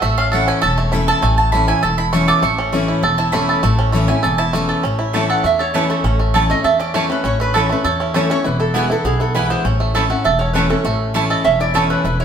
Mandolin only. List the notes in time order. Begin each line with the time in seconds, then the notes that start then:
0.02 E5
0.18 F5
0.33 F#5
0.48 G#5
0.62 A5
0.78 C#5
0.93 E5
1.08 A5
1.22 G#5
1.38 A5
1.52 B5
1.68 G#5
1.83 A5
1.98 B5
2.13 C#6
2.28 D6
2.43 C#6
3.18 A5
3.33 B5
3.63 A5
4.08 G#5
4.38 A5
5.13 A3 E4 C#5 A5
5.74 A3 E4 C#5 A5
6.34 A3 E4 C#5 A5
6.94 A3 E4 C#5 A5
7.54 A3 E4 C#5 A5
8.14 A3 E4 C#5 A5
8.74 B3 E4 B4 G#5
9.35 B3 E4 B4 G#5
9.95 A3 E4 C#5 A5
10.55 A3 E4 C#5 A5
11.14 A3 E4 C#5 A5
11.74 A3 E4 C#5 A5